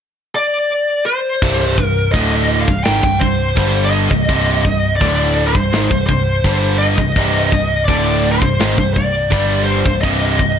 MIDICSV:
0, 0, Header, 1, 5, 480
1, 0, Start_track
1, 0, Key_signature, -3, "minor"
1, 0, Tempo, 716846
1, 958, Time_signature, 4, 2, 24, 8
1, 7092, End_track
2, 0, Start_track
2, 0, Title_t, "Lead electric guitar"
2, 0, Program_c, 0, 29
2, 238, Note_on_c, 0, 74, 100
2, 707, Note_off_c, 0, 74, 0
2, 710, Note_on_c, 0, 72, 97
2, 1225, Note_off_c, 0, 72, 0
2, 1225, Note_on_c, 0, 70, 97
2, 1419, Note_off_c, 0, 70, 0
2, 1422, Note_on_c, 0, 75, 85
2, 1727, Note_off_c, 0, 75, 0
2, 1747, Note_on_c, 0, 77, 98
2, 1899, Note_off_c, 0, 77, 0
2, 1901, Note_on_c, 0, 79, 102
2, 2140, Note_on_c, 0, 72, 94
2, 2157, Note_off_c, 0, 79, 0
2, 2555, Note_off_c, 0, 72, 0
2, 2578, Note_on_c, 0, 74, 64
2, 2609, Note_off_c, 0, 74, 0
2, 2612, Note_on_c, 0, 75, 107
2, 3318, Note_off_c, 0, 75, 0
2, 3323, Note_on_c, 0, 74, 87
2, 3662, Note_off_c, 0, 74, 0
2, 3664, Note_on_c, 0, 72, 92
2, 4055, Note_off_c, 0, 72, 0
2, 4063, Note_on_c, 0, 72, 102
2, 4539, Note_off_c, 0, 72, 0
2, 4542, Note_on_c, 0, 75, 106
2, 5245, Note_off_c, 0, 75, 0
2, 5258, Note_on_c, 0, 74, 81
2, 5568, Note_off_c, 0, 74, 0
2, 5570, Note_on_c, 0, 72, 102
2, 5960, Note_off_c, 0, 72, 0
2, 5988, Note_on_c, 0, 74, 101
2, 6449, Note_off_c, 0, 74, 0
2, 6455, Note_on_c, 0, 72, 95
2, 6692, Note_off_c, 0, 72, 0
2, 6707, Note_on_c, 0, 75, 100
2, 7092, Note_off_c, 0, 75, 0
2, 7092, End_track
3, 0, Start_track
3, 0, Title_t, "Distorted electric guitar"
3, 0, Program_c, 1, 30
3, 957, Note_on_c, 1, 36, 91
3, 963, Note_on_c, 1, 43, 94
3, 967, Note_on_c, 1, 48, 95
3, 1184, Note_off_c, 1, 36, 0
3, 1191, Note_off_c, 1, 43, 0
3, 1192, Note_on_c, 1, 36, 63
3, 1195, Note_off_c, 1, 48, 0
3, 1199, Note_on_c, 1, 43, 67
3, 1387, Note_off_c, 1, 36, 0
3, 1390, Note_off_c, 1, 43, 0
3, 1429, Note_on_c, 1, 38, 92
3, 1437, Note_on_c, 1, 45, 95
3, 1442, Note_on_c, 1, 50, 90
3, 1786, Note_off_c, 1, 38, 0
3, 1790, Note_off_c, 1, 45, 0
3, 1792, Note_off_c, 1, 50, 0
3, 1795, Note_on_c, 1, 36, 66
3, 1800, Note_on_c, 1, 43, 65
3, 1910, Note_off_c, 1, 36, 0
3, 1913, Note_on_c, 1, 44, 86
3, 1915, Note_off_c, 1, 43, 0
3, 1917, Note_on_c, 1, 51, 85
3, 2027, Note_off_c, 1, 44, 0
3, 2030, Note_off_c, 1, 51, 0
3, 2030, Note_on_c, 1, 36, 68
3, 2036, Note_on_c, 1, 43, 84
3, 2139, Note_off_c, 1, 36, 0
3, 2142, Note_off_c, 1, 43, 0
3, 2147, Note_on_c, 1, 36, 56
3, 2150, Note_on_c, 1, 43, 65
3, 2344, Note_off_c, 1, 36, 0
3, 2346, Note_off_c, 1, 43, 0
3, 2384, Note_on_c, 1, 43, 84
3, 2393, Note_on_c, 1, 50, 97
3, 2397, Note_on_c, 1, 55, 93
3, 2744, Note_off_c, 1, 43, 0
3, 2748, Note_off_c, 1, 50, 0
3, 2750, Note_off_c, 1, 55, 0
3, 2752, Note_on_c, 1, 36, 71
3, 2756, Note_on_c, 1, 43, 71
3, 2863, Note_off_c, 1, 36, 0
3, 2868, Note_off_c, 1, 43, 0
3, 2871, Note_on_c, 1, 36, 92
3, 2877, Note_on_c, 1, 43, 88
3, 2877, Note_on_c, 1, 48, 99
3, 3104, Note_off_c, 1, 36, 0
3, 3108, Note_off_c, 1, 43, 0
3, 3110, Note_off_c, 1, 48, 0
3, 3112, Note_on_c, 1, 36, 63
3, 3116, Note_on_c, 1, 43, 66
3, 3307, Note_off_c, 1, 36, 0
3, 3309, Note_off_c, 1, 43, 0
3, 3352, Note_on_c, 1, 38, 91
3, 3356, Note_on_c, 1, 45, 91
3, 3363, Note_on_c, 1, 50, 88
3, 3708, Note_off_c, 1, 38, 0
3, 3710, Note_off_c, 1, 45, 0
3, 3714, Note_off_c, 1, 50, 0
3, 3715, Note_on_c, 1, 36, 70
3, 3721, Note_on_c, 1, 43, 81
3, 3833, Note_off_c, 1, 36, 0
3, 3836, Note_on_c, 1, 44, 74
3, 3839, Note_off_c, 1, 43, 0
3, 3842, Note_on_c, 1, 51, 84
3, 3950, Note_off_c, 1, 44, 0
3, 3953, Note_off_c, 1, 51, 0
3, 3958, Note_on_c, 1, 36, 69
3, 3961, Note_on_c, 1, 43, 74
3, 4079, Note_off_c, 1, 36, 0
3, 4080, Note_off_c, 1, 43, 0
3, 4085, Note_on_c, 1, 36, 62
3, 4090, Note_on_c, 1, 43, 54
3, 4274, Note_off_c, 1, 36, 0
3, 4277, Note_off_c, 1, 43, 0
3, 4319, Note_on_c, 1, 43, 87
3, 4325, Note_on_c, 1, 50, 95
3, 4327, Note_on_c, 1, 55, 91
3, 4672, Note_off_c, 1, 43, 0
3, 4675, Note_off_c, 1, 50, 0
3, 4677, Note_off_c, 1, 55, 0
3, 4679, Note_on_c, 1, 36, 69
3, 4684, Note_on_c, 1, 43, 75
3, 4786, Note_off_c, 1, 36, 0
3, 4790, Note_off_c, 1, 43, 0
3, 4794, Note_on_c, 1, 36, 101
3, 4798, Note_on_c, 1, 43, 102
3, 4805, Note_on_c, 1, 48, 93
3, 5030, Note_off_c, 1, 36, 0
3, 5032, Note_off_c, 1, 43, 0
3, 5036, Note_off_c, 1, 48, 0
3, 5045, Note_on_c, 1, 36, 59
3, 5048, Note_on_c, 1, 43, 72
3, 5235, Note_off_c, 1, 36, 0
3, 5237, Note_off_c, 1, 43, 0
3, 5279, Note_on_c, 1, 38, 82
3, 5288, Note_on_c, 1, 45, 101
3, 5291, Note_on_c, 1, 50, 94
3, 5633, Note_off_c, 1, 38, 0
3, 5638, Note_off_c, 1, 45, 0
3, 5639, Note_off_c, 1, 50, 0
3, 5646, Note_on_c, 1, 36, 70
3, 5648, Note_on_c, 1, 43, 73
3, 5754, Note_off_c, 1, 36, 0
3, 5756, Note_on_c, 1, 44, 84
3, 5760, Note_off_c, 1, 43, 0
3, 5762, Note_on_c, 1, 51, 87
3, 5872, Note_off_c, 1, 44, 0
3, 5875, Note_off_c, 1, 51, 0
3, 5881, Note_on_c, 1, 43, 74
3, 5883, Note_on_c, 1, 36, 67
3, 5993, Note_off_c, 1, 36, 0
3, 5999, Note_off_c, 1, 43, 0
3, 6001, Note_on_c, 1, 36, 57
3, 6007, Note_on_c, 1, 43, 64
3, 6194, Note_off_c, 1, 36, 0
3, 6197, Note_off_c, 1, 43, 0
3, 6231, Note_on_c, 1, 43, 81
3, 6239, Note_on_c, 1, 55, 110
3, 6240, Note_on_c, 1, 50, 91
3, 6590, Note_off_c, 1, 43, 0
3, 6594, Note_off_c, 1, 50, 0
3, 6594, Note_off_c, 1, 55, 0
3, 6594, Note_on_c, 1, 36, 68
3, 6601, Note_on_c, 1, 43, 73
3, 6708, Note_off_c, 1, 36, 0
3, 6716, Note_on_c, 1, 36, 98
3, 6718, Note_off_c, 1, 43, 0
3, 6726, Note_on_c, 1, 43, 95
3, 6726, Note_on_c, 1, 48, 101
3, 6953, Note_off_c, 1, 36, 0
3, 6953, Note_off_c, 1, 43, 0
3, 6958, Note_off_c, 1, 48, 0
3, 6959, Note_on_c, 1, 36, 60
3, 6961, Note_on_c, 1, 43, 63
3, 7092, Note_off_c, 1, 36, 0
3, 7092, Note_off_c, 1, 43, 0
3, 7092, End_track
4, 0, Start_track
4, 0, Title_t, "Picked electric bass"
4, 0, Program_c, 2, 34
4, 954, Note_on_c, 2, 24, 84
4, 1179, Note_off_c, 2, 24, 0
4, 1190, Note_on_c, 2, 24, 73
4, 1417, Note_off_c, 2, 24, 0
4, 1431, Note_on_c, 2, 26, 87
4, 1769, Note_off_c, 2, 26, 0
4, 1795, Note_on_c, 2, 24, 76
4, 1908, Note_off_c, 2, 24, 0
4, 1923, Note_on_c, 2, 32, 87
4, 2028, Note_off_c, 2, 32, 0
4, 2032, Note_on_c, 2, 24, 84
4, 2146, Note_off_c, 2, 24, 0
4, 2155, Note_on_c, 2, 24, 71
4, 2379, Note_off_c, 2, 24, 0
4, 2392, Note_on_c, 2, 31, 97
4, 2729, Note_off_c, 2, 31, 0
4, 2751, Note_on_c, 2, 24, 78
4, 2865, Note_off_c, 2, 24, 0
4, 2874, Note_on_c, 2, 24, 85
4, 3099, Note_off_c, 2, 24, 0
4, 3113, Note_on_c, 2, 24, 84
4, 3338, Note_off_c, 2, 24, 0
4, 3356, Note_on_c, 2, 26, 89
4, 3692, Note_off_c, 2, 26, 0
4, 3716, Note_on_c, 2, 24, 79
4, 3829, Note_off_c, 2, 24, 0
4, 3845, Note_on_c, 2, 32, 99
4, 3954, Note_off_c, 2, 32, 0
4, 3958, Note_on_c, 2, 24, 87
4, 4070, Note_off_c, 2, 24, 0
4, 4079, Note_on_c, 2, 24, 69
4, 4303, Note_off_c, 2, 24, 0
4, 4315, Note_on_c, 2, 31, 90
4, 4652, Note_off_c, 2, 31, 0
4, 4678, Note_on_c, 2, 24, 85
4, 4791, Note_off_c, 2, 24, 0
4, 4795, Note_on_c, 2, 24, 99
4, 5021, Note_off_c, 2, 24, 0
4, 5037, Note_on_c, 2, 24, 84
4, 5262, Note_off_c, 2, 24, 0
4, 5279, Note_on_c, 2, 26, 92
4, 5615, Note_off_c, 2, 26, 0
4, 5638, Note_on_c, 2, 24, 82
4, 5752, Note_off_c, 2, 24, 0
4, 5756, Note_on_c, 2, 32, 84
4, 5871, Note_off_c, 2, 32, 0
4, 5883, Note_on_c, 2, 24, 87
4, 5994, Note_off_c, 2, 24, 0
4, 6001, Note_on_c, 2, 24, 69
4, 6225, Note_off_c, 2, 24, 0
4, 6240, Note_on_c, 2, 31, 85
4, 6577, Note_off_c, 2, 31, 0
4, 6601, Note_on_c, 2, 24, 81
4, 6713, Note_off_c, 2, 24, 0
4, 6719, Note_on_c, 2, 24, 88
4, 6945, Note_off_c, 2, 24, 0
4, 6960, Note_on_c, 2, 24, 82
4, 7092, Note_off_c, 2, 24, 0
4, 7092, End_track
5, 0, Start_track
5, 0, Title_t, "Drums"
5, 951, Note_on_c, 9, 49, 62
5, 952, Note_on_c, 9, 36, 109
5, 1018, Note_off_c, 9, 49, 0
5, 1019, Note_off_c, 9, 36, 0
5, 1191, Note_on_c, 9, 36, 91
5, 1258, Note_off_c, 9, 36, 0
5, 1432, Note_on_c, 9, 36, 108
5, 1436, Note_on_c, 9, 49, 62
5, 1498, Note_off_c, 9, 36, 0
5, 1503, Note_off_c, 9, 49, 0
5, 1794, Note_on_c, 9, 36, 91
5, 1861, Note_off_c, 9, 36, 0
5, 1909, Note_on_c, 9, 49, 72
5, 1913, Note_on_c, 9, 38, 112
5, 1976, Note_off_c, 9, 49, 0
5, 1980, Note_off_c, 9, 38, 0
5, 2031, Note_on_c, 9, 36, 103
5, 2098, Note_off_c, 9, 36, 0
5, 2152, Note_on_c, 9, 36, 87
5, 2219, Note_off_c, 9, 36, 0
5, 2389, Note_on_c, 9, 49, 68
5, 2390, Note_on_c, 9, 36, 105
5, 2456, Note_off_c, 9, 49, 0
5, 2457, Note_off_c, 9, 36, 0
5, 2752, Note_on_c, 9, 36, 87
5, 2818, Note_off_c, 9, 36, 0
5, 2871, Note_on_c, 9, 49, 65
5, 2872, Note_on_c, 9, 36, 114
5, 2938, Note_off_c, 9, 49, 0
5, 2939, Note_off_c, 9, 36, 0
5, 3113, Note_on_c, 9, 36, 96
5, 3180, Note_off_c, 9, 36, 0
5, 3355, Note_on_c, 9, 36, 99
5, 3360, Note_on_c, 9, 49, 60
5, 3422, Note_off_c, 9, 36, 0
5, 3427, Note_off_c, 9, 49, 0
5, 3716, Note_on_c, 9, 36, 93
5, 3783, Note_off_c, 9, 36, 0
5, 3839, Note_on_c, 9, 49, 60
5, 3842, Note_on_c, 9, 38, 111
5, 3906, Note_off_c, 9, 49, 0
5, 3909, Note_off_c, 9, 38, 0
5, 3956, Note_on_c, 9, 36, 101
5, 4023, Note_off_c, 9, 36, 0
5, 4076, Note_on_c, 9, 36, 90
5, 4143, Note_off_c, 9, 36, 0
5, 4313, Note_on_c, 9, 49, 61
5, 4315, Note_on_c, 9, 36, 116
5, 4380, Note_off_c, 9, 49, 0
5, 4382, Note_off_c, 9, 36, 0
5, 4674, Note_on_c, 9, 36, 98
5, 4741, Note_off_c, 9, 36, 0
5, 4795, Note_on_c, 9, 36, 111
5, 4795, Note_on_c, 9, 49, 67
5, 4862, Note_off_c, 9, 36, 0
5, 4862, Note_off_c, 9, 49, 0
5, 5037, Note_on_c, 9, 36, 99
5, 5104, Note_off_c, 9, 36, 0
5, 5277, Note_on_c, 9, 36, 109
5, 5279, Note_on_c, 9, 49, 57
5, 5344, Note_off_c, 9, 36, 0
5, 5346, Note_off_c, 9, 49, 0
5, 5636, Note_on_c, 9, 36, 95
5, 5703, Note_off_c, 9, 36, 0
5, 5760, Note_on_c, 9, 49, 64
5, 5763, Note_on_c, 9, 38, 117
5, 5827, Note_off_c, 9, 49, 0
5, 5830, Note_off_c, 9, 38, 0
5, 5879, Note_on_c, 9, 36, 91
5, 5946, Note_off_c, 9, 36, 0
5, 6000, Note_on_c, 9, 36, 92
5, 6067, Note_off_c, 9, 36, 0
5, 6240, Note_on_c, 9, 36, 110
5, 6244, Note_on_c, 9, 49, 66
5, 6307, Note_off_c, 9, 36, 0
5, 6311, Note_off_c, 9, 49, 0
5, 6600, Note_on_c, 9, 36, 94
5, 6667, Note_off_c, 9, 36, 0
5, 6719, Note_on_c, 9, 36, 104
5, 6721, Note_on_c, 9, 49, 74
5, 6786, Note_off_c, 9, 36, 0
5, 6788, Note_off_c, 9, 49, 0
5, 6959, Note_on_c, 9, 36, 96
5, 7026, Note_off_c, 9, 36, 0
5, 7092, End_track
0, 0, End_of_file